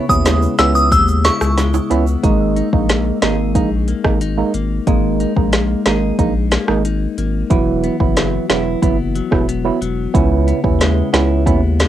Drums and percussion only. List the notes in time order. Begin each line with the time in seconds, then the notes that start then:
0.09 kick, shaker
0.25 snare, closed hi-hat, high timbale, shaker
0.42 shaker
0.58 snare, closed hi-hat, shaker
0.75 shaker
0.92 kick, closed hi-hat, shaker
1.08 shaker
1.24 snare, closed hi-hat, shaker
1.41 cross-stick, shaker
1.58 snare, closed hi-hat, high timbale, shaker
1.74 high timbale, shaker
1.91 closed hi-hat
2.07 shaker
2.23 kick, closed hi-hat
2.56 closed hi-hat
2.73 kick
2.89 snare, closed hi-hat
3.22 snare, closed hi-hat
3.55 kick, closed hi-hat
3.88 closed hi-hat
4.05 kick, cross-stick
4.21 closed hi-hat
4.54 closed hi-hat
4.87 kick, closed hi-hat
5.20 closed hi-hat
5.36 kick
5.53 snare, closed hi-hat
5.86 snare, closed hi-hat
6.19 kick, closed hi-hat
6.51 snare, closed hi-hat
6.68 cross-stick
6.85 closed hi-hat
7.18 closed hi-hat
7.51 kick, closed hi-hat
7.84 closed hi-hat
8.00 kick
8.17 snare, closed hi-hat
8.50 snare, closed hi-hat
8.83 kick, closed hi-hat
9.16 closed hi-hat
9.32 kick, cross-stick
9.49 closed hi-hat
9.82 closed hi-hat
10.15 kick, closed hi-hat
10.48 closed hi-hat
10.64 kick
10.81 snare, closed hi-hat
11.14 snare, closed hi-hat
11.47 kick, closed hi-hat
11.80 snare, closed hi-hat